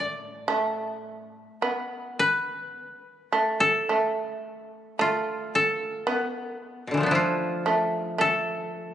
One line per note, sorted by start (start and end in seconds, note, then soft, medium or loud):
0.00 1.44 A2 medium
0.00 0.47 A3 medium
0.00 0.85 A4 medium
0.00 0.12 B4 medium
0.00 1.60 D5 soft
0.48 1.62 A3 medium
1.62 2.75 B3 medium
2.19 3.97 B4 medium
3.32 3.88 A3 medium
3.60 5.51 A4 medium
3.89 4.98 A3 medium
4.99 6.06 A3 medium
4.99 7.00 F4 medium
5.55 6.10 A4 medium
6.07 7.12 B3 medium
6.07 6.25 A#4 medium
6.25 6.41 A4 medium
6.41 6.56 A#4 medium
6.56 7.45 A4 medium
6.87 7.03 B2 soft
6.87 7.17 D3 soft
6.94 7.12 E3 soft
6.94 7.17 F3 soft
7.00 8.94 A3 soft
7.00 8.94 B3 soft
7.06 8.94 D4 soft
7.11 8.94 F3 soft
7.11 8.94 E4 medium
7.15 8.94 F4 medium
7.66 8.17 A3 medium
8.18 8.94 A3 medium
8.18 8.94 A4 medium